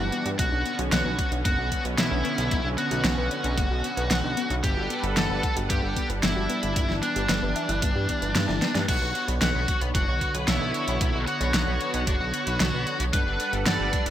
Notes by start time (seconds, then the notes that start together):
Already playing: E3 G3 D4 F#4
0.00 G1
0.12 B3, closed hi-hat
0.26 G2 G4, closed hi-hat
0.39 B1 D3 B3 C#4 F#4, kick, closed hi-hat
0.52 B1 D4
0.65 B3, closed hi-hat
0.79 B1 F#4, closed hi-hat
0.92 B1 B3 F#4, snare, closed hi-hat
1.05 B1 B4
1.18 D5, kick, closed hi-hat
1.32 B1 D4, closed hi-hat
1.45 F#1 B3 F#4, kick, closed hi-hat
1.58 B1 F#4
1.72 B3, kick, closed hi-hat
1.85 B1 B4, closed hi-hat
1.98 B1 B3 E4, snare, closed hi-hat
2.11 B1 D4
2.25 B3, closed hi-hat
2.38 B1 F#4, closed hi-hat
2.51 B1 B3, kick, closed hi-hat
2.64 B1 D4
2.78 B3 F#4, closed hi-hat
2.91 B1 F#4, closed hi-hat
3.04 B1 B3, snare, closed hi-hat
3.18 B1 B4
3.31 D5, closed hi-hat
3.44 B1 D4, closed hi-hat
3.57 F#1 B3, kick, closed hi-hat
3.71 B1 F#4
3.84 B3, closed hi-hat
3.97 B1 B4, closed hi-hat
4.11 B1 B3, snare, closed hi-hat
4.24 B1 D4
4.37 B3, closed hi-hat
4.50 B1 F#4, closed hi-hat
4.64 G1 G3 B3 D4 G4 A4 B4 F#5, kick, closed hi-hat
4.77 G1 F#4
4.90 B3, closed hi-hat
5.03 G1 G4, closed hi-hat
5.17 G1 B3 A4, snare, closed hi-hat
5.30 G1 B4
5.43 F#5, kick, closed hi-hat
5.57 G1 F#4, closed hi-hat
5.70 G2 B3 G4, kick, closed hi-hat
5.83 G1 G4
5.96 B3, kick, closed hi-hat
6.10 G1 B4, closed hi-hat
6.23 G1 B3 E4, snare, closed hi-hat
6.36 G1 F#4
6.49 B3, closed hi-hat
6.63 G1 G4, closed hi-hat
6.76 G1 E3 G3 B3, kick, closed hi-hat
6.89 G1 E4, snare
7.03 B3 D4, closed hi-hat
7.16 G1 G4, closed hi-hat
7.29 G1 B3, snare, closed hi-hat
7.42 G1 B4
7.56 E5, closed hi-hat
7.69 G1 E4, closed hi-hat
7.82 G1 B3, kick, closed hi-hat
7.95 G2 G4
8.09 B3, kick, closed hi-hat
8.22 G1 B4, closed hi-hat
8.35 G2 B3, snare, closed hi-hat
8.49 G1 E4, snare
8.62 B3, snare, closed hi-hat
8.75 G2 G4, snare, closed hi-hat
8.88 B1 D3 B3 F#4 C#5, kick, closed hi-hat, crash
9.02 B1 F#4
9.15 F#4, closed hi-hat
9.28 B1 B3, closed hi-hat
9.42 B1 B3 F#4, snare, closed hi-hat
9.55 B1 B3
9.68 F#4, kick, closed hi-hat
9.81 B1 B3, closed hi-hat
9.95 F#1 D4 F#4, kick, closed hi-hat
10.08 B1 F#4
10.21 F#4, kick, closed hi-hat
10.35 B1 B4, closed hi-hat
10.48 B1 B3 E4, snare, closed hi-hat
10.61 B1 B3
10.74 F#4, closed hi-hat
10.88 B1 B3, closed hi-hat
11.01 B1 B3, kick, closed hi-hat
11.14 B1 F#4
11.27 F#4, closed hi-hat
11.41 B1 B3, closed hi-hat
11.54 B1 B3, snare, closed hi-hat
11.67 B1 B3
11.81 F#4, closed hi-hat
11.94 B1 B3, closed hi-hat
12.07 F#1 D4, kick, closed hi-hat
12.20 B1 F#4
12.34 F#4, closed hi-hat
12.47 B1 B4, closed hi-hat
12.60 B1 B3, snare, closed hi-hat
12.73 B1 B3
12.87 F#4, closed hi-hat
13.00 B1 B3, closed hi-hat
13.13 G1 G3 D4 A4 B4 F#5, kick, closed hi-hat
13.27 G1 D4
13.40 D4, closed hi-hat
13.53 G1 G3, closed hi-hat
13.66 G1 G3 D5, snare, closed hi-hat
13.80 G1 G3
13.93 D4, kick, closed hi-hat
14.06 G1 G3, closed hi-hat